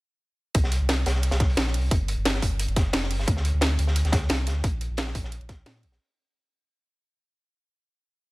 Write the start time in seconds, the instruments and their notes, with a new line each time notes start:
0.55 sub bass C2, kick, closed hi-hat
0.64 snare
0.72 closed hi-hat
0.81 sub bass C2
0.89 snare, closed hi-hat
1.06 sub bass C2, snare, closed hi-hat
1.15 snare
1.23 closed hi-hat, open hi-hat
1.31 sub bass C2, snare, closed hi-hat
1.40 kick, snare, closed hi-hat
1.50 open hi-hat
1.57 sub bass A#1, snare, closed hi-hat
1.67 snare
1.74 sub bass C2, closed hi-hat, open hi-hat
1.91 sub bass G1, kick, closed hi-hat
2.08 closed hi-hat
2.17 sub bass G1
2.25 snare, closed hi-hat
2.34 snare
2.42 sub bass G1, kick, closed hi-hat, open hi-hat
2.59 closed hi-hat
2.68 sub bass G1, closed hi-hat
2.76 kick, snare, closed hi-hat
2.93 sub bass F1, snare, closed hi-hat
3.03 snare
3.11 sub bass G1, closed hi-hat, open hi-hat
3.19 snare
3.27 sub bass D2, kick, closed hi-hat
3.37 snare
3.45 closed hi-hat
3.54 sub bass D2
3.61 snare, closed hi-hat
3.79 sub bass D2, closed hi-hat
3.87 snare
3.96 closed hi-hat
4.05 sub bass D2, snare, closed hi-hat
4.12 kick, snare, closed hi-hat
4.29 sub bass C2, snare, closed hi-hat
4.47 sub bass D2, snare, closed hi-hat
4.64 sub bass A#1, kick, closed hi-hat
4.81 closed hi-hat
4.90 sub bass A#1
4.97 snare, closed hi-hat
5.07 snare
5.15 sub bass A#1, kick, closed hi-hat, open hi-hat
5.24 snare
5.32 closed hi-hat
5.41 sub bass A#1, closed hi-hat
5.49 kick, snare, closed hi-hat
5.66 sub bass A#2, snare, closed hi-hat
5.75 snare
5.83 sub bass A#1, closed hi-hat, open hi-hat
5.92 snare